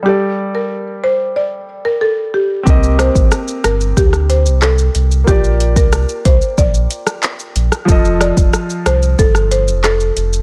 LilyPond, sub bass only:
\new Staff \with { instrumentName = "Sub bass" } { \clef bass \time 4/4 \key g \minor \tempo 4 = 92 r1 | c,8. a,,16 r8 g,,8 d,8. c,8. c,8 | bes,,8. c,8 r16 c,16 r16 bes,,8 r4 bes,,16 r16 | f,,8. f,,16 r8 c,8 g,,8. f,,8. f,,8 | }